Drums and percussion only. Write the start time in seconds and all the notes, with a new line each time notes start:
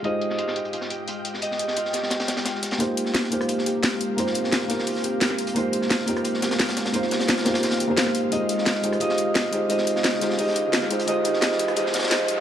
0.04 closed hi-hat
0.21 closed hi-hat
0.30 snare
0.38 closed hi-hat
0.48 snare
0.56 closed hi-hat
0.65 closed hi-hat
0.73 closed hi-hat
0.81 snare
0.90 closed hi-hat
1.08 closed hi-hat
1.25 closed hi-hat
1.34 snare
1.42 closed hi-hat
1.51 snare
1.59 closed hi-hat
1.68 snare
1.76 closed hi-hat
1.85 snare
1.93 snare, closed hi-hat
2.03 snare
2.10 snare, closed hi-hat
2.20 snare, closed hi-hat
2.28 snare, closed hi-hat
2.37 snare, closed hi-hat
2.45 snare, closed hi-hat
2.55 snare
2.63 snare, closed hi-hat
2.71 snare, closed hi-hat
2.80 closed hi-hat
2.97 closed hi-hat
3.06 snare
3.15 snare, closed hi-hat
3.24 snare
3.32 closed hi-hat
3.41 cross-stick, closed hi-hat
3.49 closed hi-hat
3.58 snare
3.66 closed hi-hat
3.83 snare, closed hi-hat
4.01 closed hi-hat
4.18 closed hi-hat
4.27 snare
4.34 closed hi-hat
4.44 snare
4.52 snare, closed hi-hat
4.62 snare
4.70 snare, closed hi-hat
4.79 snare
4.87 closed hi-hat, open hi-hat
4.96 snare
5.04 closed hi-hat
5.21 snare, closed hi-hat
5.30 cross-stick, snare
5.38 closed hi-hat
5.47 closed hi-hat
5.56 closed hi-hat
5.73 closed hi-hat
5.82 snare
5.90 snare, closed hi-hat
5.99 snare
6.07 closed hi-hat
6.16 cross-stick, closed hi-hat
6.24 closed hi-hat
6.34 snare
6.42 snare, closed hi-hat
6.51 snare, closed hi-hat
6.59 snare, closed hi-hat
6.69 snare, closed hi-hat
6.77 snare, closed hi-hat
6.85 snare, closed hi-hat
6.93 closed hi-hat
7.03 snare
7.11 snare, closed hi-hat
7.20 snare, closed hi-hat
7.28 snare, closed hi-hat
7.37 snare, closed hi-hat
7.45 snare, closed hi-hat
7.54 snare, closed hi-hat
7.63 snare, closed hi-hat
7.71 snare, closed hi-hat
7.80 closed hi-hat
7.97 snare, closed hi-hat
8.06 cross-stick, snare
8.15 closed hi-hat
8.32 closed hi-hat
8.49 closed hi-hat
8.58 snare
8.66 snare, closed hi-hat
8.75 snare
8.83 closed hi-hat
8.93 cross-stick, closed hi-hat
9.00 closed hi-hat
9.09 snare
9.18 closed hi-hat
9.35 snare, closed hi-hat
9.53 closed hi-hat
9.70 closed hi-hat
9.78 snare
9.87 closed hi-hat
9.96 snare
10.04 snare, closed hi-hat
10.14 snare
10.21 snare, closed hi-hat
10.30 snare
10.38 closed hi-hat, open hi-hat
10.48 snare
10.56 closed hi-hat
10.73 snare, closed hi-hat
10.82 cross-stick, snare
10.91 closed hi-hat
11.00 closed hi-hat
11.07 closed hi-hat
11.25 closed hi-hat
11.34 snare
11.41 snare, closed hi-hat
11.52 snare
11.59 closed hi-hat
11.68 cross-stick, closed hi-hat
11.76 closed hi-hat
11.86 snare
11.94 snare, closed hi-hat
11.99 snare, closed hi-hat
12.03 snare, closed hi-hat
12.07 snare, closed hi-hat
12.11 snare, closed hi-hat
12.28 closed hi-hat